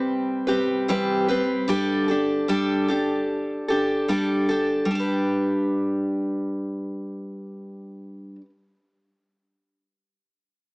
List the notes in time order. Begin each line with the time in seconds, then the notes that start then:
Already playing: G3 C4 G4 B4
0.47 G3 C4 G4 B4
0.88 C3 E3 G3 C4 G4 B4
1.28 G3 C4 G4 B4
1.68 G3 D4 G4 A4
2.08 D4 G4 A4
2.48 G3 D4 G4 A4
2.88 D4 G4 A4
3.68 D4 G4 A4
4.08 G3 D4 G4 A4
4.49 D4 G4 A4
4.85 G3
4.91 D4
4.95 G4
4.99 B4